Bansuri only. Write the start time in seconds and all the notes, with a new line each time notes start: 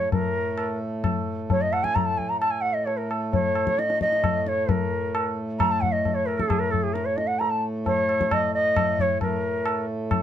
Already playing: C#5
0.13 A#4
1.51 C#5
1.61 D#5
1.73 F#5
1.84 G#5
1.95 A#5
2.05 A5
2.18 G#5
2.29 A#5
2.40 A5
2.51 G#5
2.61 F#5
2.74 D#5
2.86 C#5
2.97 A#4
3.32 C#5
3.79 D#5
4.02 D#5
4.48 C#5
4.71 A#4
5.59 A#5
5.71 A5
5.81 F#5
5.92 D#5
6.15 C#5
6.26 A#4
6.38 A4
6.49 G#4
6.59 A#4
6.71 A4
6.83 G#4
6.94 A#4
7.05 C#5
7.17 D#5
7.27 F#5
7.39 A#5
7.50 A5
7.86 C#5
8.33 D#5
8.54 D#5
9.01 C#5
9.22 A#4